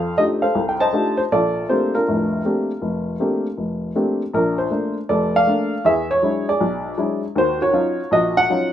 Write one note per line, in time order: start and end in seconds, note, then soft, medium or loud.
0.00 0.12 F2 medium
0.00 0.42 A4 medium
0.00 0.41 C5 medium
0.00 0.18 F5 medium
0.17 0.43 A3 soft
0.17 0.43 D4 soft
0.17 0.43 D#4 soft
0.17 0.43 F4 soft
0.17 0.44 G4 medium
0.17 0.23 D#5 medium
0.42 1.14 A4 medium
0.42 0.79 C5 medium
0.42 0.71 F5 medium
0.55 0.88 C2 medium
0.69 0.79 G5 medium
0.80 1.16 C5 medium
0.80 1.28 D#5 medium
0.80 1.19 A5 medium
0.93 1.19 A3 soft
0.93 1.19 D4 soft
0.93 1.19 D#4 soft
0.93 1.19 F4 soft
0.93 1.19 G4 soft
1.17 1.22 C5 medium
1.32 1.64 A#1 medium
1.32 1.94 F4 medium
1.32 2.03 A4 medium
1.32 1.70 D5 medium
1.69 1.95 A3 soft
1.69 1.95 A#3 soft
1.69 1.95 C4 soft
1.69 1.94 D4 soft
1.69 1.95 G4 medium
1.69 1.94 C5 medium
1.95 2.44 D4 soft
1.95 3.92 F4 soft
1.95 3.92 A#4 medium
2.08 2.40 F1 medium
2.08 2.40 A2 medium
2.45 2.70 A3 soft
2.45 2.71 A#3 soft
2.45 2.71 C4 soft
2.45 2.71 D4 soft
2.45 2.71 G4 medium
2.82 3.14 F1 medium
3.20 3.46 A3 soft
3.20 3.46 A#3 soft
3.20 3.46 C4 soft
3.20 3.46 D4 soft
3.20 3.46 G4 soft
3.57 3.90 F1 medium
3.95 4.21 A3 soft
3.95 4.21 A#3 soft
3.95 4.22 C4 soft
3.95 4.21 D4 soft
3.95 4.22 G4 medium
4.34 4.66 A#1 medium
4.34 4.70 D4 soft
4.34 4.57 A#4 medium
4.58 4.93 C5 medium
4.71 4.97 A3 soft
4.71 4.97 A#3 soft
4.71 4.97 D4 soft
5.09 5.42 F1 medium
5.09 5.81 A4 medium
5.09 5.34 D5 medium
5.36 5.82 D5 medium
5.36 5.87 F5 medium
5.47 5.73 A3 soft
5.47 5.73 A#3 soft
5.47 5.73 D4 medium
5.85 6.17 E2 medium
5.85 6.48 G#4 medium
5.85 6.10 E5 medium
6.11 6.45 C#5 medium
6.22 6.48 F#3 medium
6.22 6.49 G#3 soft
6.22 6.49 D4 soft
6.22 6.49 E4 medium
6.49 7.20 G#4 medium
6.49 7.20 D5 medium
6.60 6.93 B1 medium
6.98 7.24 F#3 medium
6.98 7.24 G#3 soft
6.98 7.24 D4 soft
6.98 7.24 E4 medium
7.36 7.68 D#2 medium
7.36 7.60 F#4 medium
7.36 7.60 C5 medium
7.62 8.11 F#4 medium
7.62 8.09 C#5 medium
7.73 7.99 F#3 soft
7.73 7.99 C#4 soft
7.73 7.99 D#4 soft
7.73 8.00 F4 medium
8.11 8.44 A#1 medium
8.11 8.73 F#4 medium
8.11 8.37 D#5 medium
8.37 8.73 F#5 loud
8.50 8.73 F#3 medium
8.50 8.73 C#4 soft
8.50 8.73 D#4 soft
8.50 8.73 F4 medium